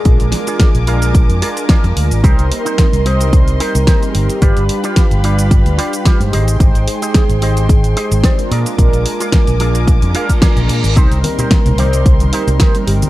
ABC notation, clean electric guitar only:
X:1
M:4/4
L:1/16
Q:"Swing 16ths" 1/4=110
K:Cm
V:1 name="Clean electric guitar"
[FABd]2 z [FABd] z2 [FABf]2 z2 [FABd] z [FABd] z3 | [EGBc]2 z [EGBc] z2 [EGBe]2 z2 [EGBc] z [EGBc] z3 | [FG=Bd]2 z [FGBd] z2 [FGBd]2 z2 [FGBd] z [FGBd] z [GAce]2- | [GAce]2 z [GAce] z2 [GAce]2 z2 [GAce] z [GAcd] z [FABd]2- |
[FABd]2 z [FABd] z2 [FABd]2 z2 [FABf] z [FABd] z3 | [EGBc]2 z [EGBc] z2 [EGBd]2 z2 [EGBc] z [EGBc] z3 |]